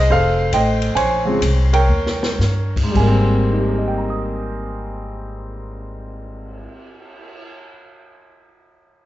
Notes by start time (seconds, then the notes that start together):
0.10 F1 A4 C5 F5
0.52 A1 C5 D#5 G5, hi-hat pedal, ride
0.82 ride
0.95 A#1 C5 C#5 G#5, ride
1.25 C#3 F3 G#3 C4
1.41 C2, hi-hat pedal, ride
1.73 A#4 C#5 G5, ride
1.88 D#2
2.06 snare
2.23 snare
2.39 G2, snare, hi-hat pedal
2.76 kick, crash
2.83 G#2
2.91 G#1 G3
2.95 G#5, kick, crash
3.00 A#3
3.08 C4
3.33 cymbal swell
3.53 D#4
3.60 G4
3.69 A#4
3.78 D#5
3.88 G5
3.98 A#5
4.10 D#6